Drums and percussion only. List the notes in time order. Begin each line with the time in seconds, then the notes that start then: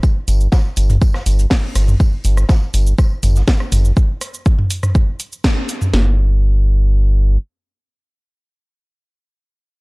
0.03 kick, tambourine, shaker
0.28 open hi-hat, tambourine, shaker
0.41 shaker
0.52 kick, cross-stick, snare, tambourine, shaker
0.76 open hi-hat, tambourine, shaker
0.90 closed hi-hat, mid tom, shaker
1.02 kick, tambourine, shaker
1.14 cross-stick, snare
1.26 open hi-hat, tambourine, shaker
1.39 closed hi-hat, shaker
1.50 kick, snare, open hi-hat, shaker
1.75 cross-stick, open hi-hat, tambourine, shaker
1.88 mid tom, shaker
2.00 kick, tambourine, shaker
2.24 open hi-hat, tambourine, shaker
2.37 cross-stick, shaker
2.49 kick, snare, tambourine, shaker
2.74 open hi-hat, tambourine, shaker
2.87 shaker
2.98 kick, cross-stick, tambourine, shaker
3.23 mid tom, open hi-hat, tambourine, shaker
3.36 snare, shaker
3.48 kick, snare, tambourine, shaker
3.60 cross-stick
3.72 mid tom, open hi-hat, tambourine, shaker
3.85 shaker
3.97 kick, shaker
4.21 cross-stick, open hi-hat, shaker
4.34 shaker
4.46 kick, shaker
4.59 mid tom
4.71 open hi-hat, shaker
4.83 cross-stick, mid tom, shaker
4.95 kick, shaker
5.20 open hi-hat, shaker
5.32 shaker
5.44 kick, cross-stick, snare, open hi-hat, shaker
5.69 open hi-hat, shaker
5.82 mid tom, shaker
5.93 snare